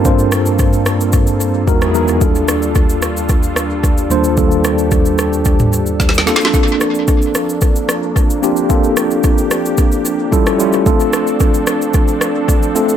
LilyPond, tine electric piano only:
\new Staff \with { instrumentName = "Tine electric piano" } { \time 4/4 \key ees \lydian \tempo 4 = 111 <g, bes c' d' f' c''>4. r4. <e, gis b dis' fis' ais'>8 <e, gis b dis' fis' ais'>8 | <ees, g bes d' f' a'>4. r2 <ees, g bes d' f' c''>8 | <ees, g bes d' f' a'>4. r2 <bes c' d' f' a'>8~ | <bes c' d' f' a'>4 r2 r8 <bes c' d' f' g'>8 |
<bes c' d' f' a'>4. r4. <g cis' e' f' a'>8 <g cis' e' f' g'>8 | <a c' d' f' a'>4. r2 <a c' d' f' a'>8 | }